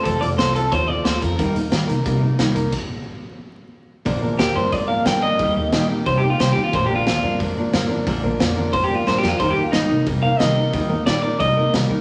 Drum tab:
CC |--------|--------|x-------|--------|
HH |xxxxx-xx|xxxxx-xx|--------|o-o-o-o-|
SD |--o---o-|--o---o-|--------|--o---o-|
BD |o---o--o|o---o--o|o-------|o---o---|

CC |--------|--------|--------|--------|
HH |o-o-o-o-|o-o-o-o-|o-o-o---|o-o-o-o-|
SD |--o---o-|--o---o-|--o---oo|--o---o-|
BD |o---o---|o---o---|o---o---|o---o---|

CC |--------|
HH |o-o-o-o-|
SD |--o---o-|
BD |o---o---|